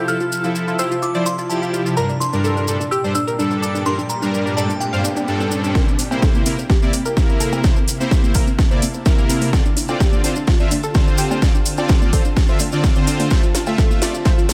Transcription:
Already playing: C3 F3 E4 A4
0.08 F3 E4 F4 A4 F6, maracas
0.20 F4, maracas
0.32 maracas
0.44 F3 E4 F4 A4, maracas
0.55 maracas
0.68 F4, maracas
0.79 F3 E4 G4 C5 E6, maracas
0.91 F4, maracas
1.02 F4 D6, maracas
1.15 F3 E4 C5 D5, maracas
1.26 F4 C6, maracas
1.38 F4, maracas
1.49 F3 E4 G4 A5, maracas
1.62 F4, maracas
1.73 F4, maracas
1.86 F4, maracas
1.97 G2 A#2 G3 D4 G4 A#4 A#5, riser, maracas
2.09 D4, maracas
2.20 D4 C6, maracas
2.33 G2 G3 D4 A#4, maracas
2.44 A4, maracas
2.57 D4, maracas
2.68 G2 G3 D4 A4, maracas
2.80 D4, maracas
2.91 G4 E6, maracas
3.04 G2 G3 D4 C5, maracas
3.15 D4 E6, maracas
3.27 A#4, maracas
3.39 G2 G3 D4 A4, maracas
3.51 D4, maracas
3.62 A4 D6, maracas
3.75 D4, maracas
3.86 G2 G3 C4 D4 A#4 C6, maracas
3.98 D4, maracas
4.09 A#5, maracas
4.22 G2 G3 D4 A#4, maracas
4.34 maracas
4.46 D4, maracas
4.57 G2 G3 D4 A4 D5 A5, maracas
4.69 D4, maracas
4.80 D4 G5, maracas
4.93 G2 G3 D4 C5 F5, maracas
5.04 D4, maracas
5.16 D4, maracas
5.28 G2 G3 D4 A4, maracas
5.40 D4, maracas
5.51 D4, maracas
5.64 D4, maracas
5.75 C3 A#3 E4 G4 A#4 C5, kick, snare, maracas
5.87 C4, maracas
5.99 C4, open hi-hat, maracas
6.11 C3 A#3 C4 E4 C5, cowbell, maracas
6.22 A4, kick, snare, maracas
6.34 C4, high conga, maracas
6.46 C3 A#3 C4 E4 A#4, open hi-hat, maracas
6.58 C4, maracas
6.70 G4, kick, snare, maracas
6.82 C3 A#3 C4 E4 D5, maracas
6.93 C4, open hi-hat, high conga, maracas
7.05 A#4, maracas
7.17 C3 A#3 C4 E4 A#4, kick, snare, maracas
7.29 C4, maracas
7.40 A4, open hi-hat, maracas
7.52 C4, cowbell, high conga, maracas
7.64 A5, kick, snare, maracas
7.76 C4, maracas
7.88 open hi-hat, maracas
8.00 C3 A#3 C4 E4 C5, maracas
8.11 kick, snare, maracas
8.23 C4, high conga, maracas
8.34 C3 A#3 E4 A#4, kick, open hi-hat, maracas
8.47 C4, maracas
8.59 C4, kick, snare, maracas
8.71 C3 A#3 E4 C5 D5, maracas
8.82 C4, open hi-hat, high conga, maracas
8.94 C4, maracas
9.06 C3 A#3 E4 A#4, kick, snare, maracas
9.18 C4, maracas
9.29 C4, open hi-hat, maracas
9.41 C4, open hi-hat, high conga, maracas
9.53 D3 C4 F4 A4, kick, snare, maracas
9.65 D4, maracas
9.77 D4, open hi-hat, maracas
9.88 D3 C4 D4 F4 D5, cowbell, maracas
10.00 G4, kick, snare, maracas
10.13 D4, high conga, maracas
10.24 D3 C4 D4 F4 C5, open hi-hat, maracas
10.36 D4, maracas
10.47 F4, kick, snare, maracas
10.60 D3 C4 D4 F4 E5, maracas
10.71 D4, open hi-hat, high conga, maracas
10.83 A4, maracas
10.94 D3 C4 D4 F4 C5, kick, snare, maracas
11.07 D4, maracas
11.18 G4, open hi-hat, maracas
11.31 D4, cowbell, high conga, maracas
11.42 D3 C4 D4 F4 D5, kick, snare, maracas
11.54 D4, maracas
11.66 open hi-hat, maracas
11.77 D3 C4 D4 F4 D5, cowbell, maracas
11.89 kick, snare, maracas
12.02 D4, high conga, maracas
12.13 D3 C4 F4 A4 C5, kick, open hi-hat, maracas
12.25 D4, maracas
12.37 D4, kick, snare, maracas
12.48 D3 C4 F4 C5 E5, maracas
12.59 D4, open hi-hat, high conga, maracas
12.72 D3 C4 D4 F4 D5, maracas
12.84 kick, snare, maracas
12.95 D3 C4 D4 F4 C5, maracas
13.07 D4, open hi-hat, maracas
13.20 D4, open hi-hat, high conga, maracas
13.30 F3 A3 F4 C5 E5, kick, snare, riser, maracas
13.43 F4, maracas
13.55 F4, snare, open hi-hat, maracas
13.66 A3 F4 E5, cowbell, maracas
13.78 A4, kick, snare, maracas
13.90 F4, high conga, maracas
14.02 A3 F4 D5, snare, open hi-hat, maracas
14.14 F4, maracas
14.25 A3 F4 C5 E5, kick, snare, maracas
14.38 F4, maracas
14.49 F4, snare, open hi-hat, high conga, maracas

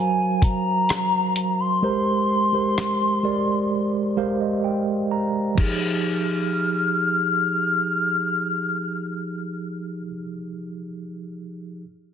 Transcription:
Already playing: F#3 F#4 A#4 C5 F5 G#5
0.42 A#5, kick, closed hi-hat
0.89 cross-stick, closed hi-hat
1.36 closed hi-hat
1.60 C6
1.82 G#3 G4 A#4 C5
2.53 G#3 G4 A#4 C5
2.78 cross-stick
3.23 G#3 G4 A#4 D5
4.17 G#3 G4 A#4 C5 F5
4.41 D#5
4.64 G5
5.11 A#5
5.55 F3 D#4 F6, kick, crash
5.60 G4 G#4

